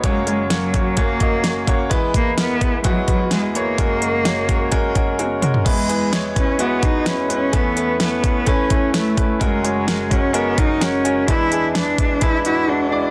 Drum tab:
CC |----------------|----------------|----------------|x---------------|
HH |x-x-x-x-x-x-x-x-|x-x-x-x-x-x-x-x-|x-x-x-x-x-x-x-x-|x-x-x-x-x-x-x-x-|
SD |----o-------o---|----o-------o---|----o-----------|----o-------o---|
T1 |----------------|----------------|------------o---|----------------|
T2 |----------------|----------------|--------------o-|----------------|
FT |----------------|----------------|---------------o|----------------|
BD |o-----o-o-o---o-|o-o---o-o-o-----|o-----o-o-o-----|o-----o---o-----|

CC |----------------|----------------|----------------|
HH |x-x-x-x-x-x-x-x-|x-x-x-x-x-x-x-x-|x-x-x-x-x-x-----|
SD |----o-------o---|----o-------o---|----o-----------|
T1 |----------------|----------------|----------------|
T2 |----------------|----------------|----------------|
FT |----------------|----------------|----------------|
BD |o-----o-o-o---o-|o-----o---o-----|o-----o-o-------|